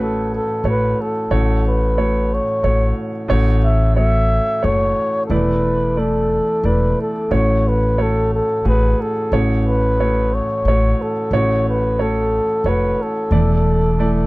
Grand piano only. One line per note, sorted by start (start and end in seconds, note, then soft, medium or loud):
0.00 1.28 A1 soft
0.00 1.27 A2 soft
0.00 0.64 A3 soft
0.00 0.65 F#4 soft
0.00 0.44 B4 soft
0.00 0.65 C#5 medium
0.64 1.11 A3 soft
0.64 1.11 F#4 soft
0.64 1.11 C#5 soft
1.31 3.27 A1 soft
1.31 3.27 A2 soft
1.31 1.77 A3 medium
1.31 1.78 F#4 soft
1.31 1.77 C#5 medium
1.97 2.44 A3 soft
1.97 2.44 F#4 soft
1.97 2.44 C#5 medium
2.63 3.10 A3 soft
2.63 3.10 F#4 soft
2.63 3.10 C#5 medium
3.28 5.25 A1 medium
3.28 5.25 A2 medium
3.28 3.76 A3 medium
3.28 3.76 F#4 medium
3.28 3.76 C#5 medium
3.96 4.43 A3 soft
3.96 4.43 F#4 soft
3.96 4.43 C#5 medium
4.63 5.09 A3 soft
4.63 5.10 F#4 soft
4.63 5.09 C#5 medium
5.30 7.28 E2 soft
5.30 7.28 E3 soft
5.30 5.77 A3 medium
5.30 5.77 E4 medium
5.30 5.77 D5 medium
5.97 6.43 A3 soft
5.97 6.43 E4 soft
5.97 6.43 D5 soft
6.64 7.11 A3 soft
6.64 7.11 E4 soft
6.64 7.11 D5 soft
7.31 9.28 A1 soft
7.31 9.28 A2 soft
7.31 7.78 A3 medium
7.31 7.78 F#4 soft
7.31 7.78 C#5 medium
7.98 8.45 A3 soft
7.98 8.45 F#4 soft
7.98 8.45 C#5 soft
8.65 9.11 A3 soft
8.65 9.12 F#4 soft
8.65 9.12 G#4 medium
9.32 11.28 A1 soft
9.32 11.28 A2 soft
9.32 9.78 A3 medium
9.32 9.79 F#4 soft
9.32 9.79 C#5 medium
10.00 10.46 A3 soft
10.00 10.45 F#4 soft
10.00 10.46 C#5 medium
10.68 11.13 A3 soft
10.68 11.13 F#4 soft
10.68 11.13 C#5 medium
11.33 13.28 A1 soft
11.33 13.28 A2 soft
11.33 11.78 A3 medium
11.33 11.79 F#4 medium
11.33 11.79 C#5 medium
11.99 12.45 A3 soft
11.99 12.45 F#4 soft
11.99 12.45 C#5 medium
12.66 13.12 A3 soft
12.66 13.12 F#4 soft
12.66 13.11 C#5 medium
13.32 14.27 E2 soft
13.32 14.27 E3 soft
13.32 13.78 A3 medium
13.32 13.78 E4 soft
13.32 13.78 D5 medium
13.99 14.27 A3 medium
13.99 14.27 E4 soft
13.99 14.27 D5 medium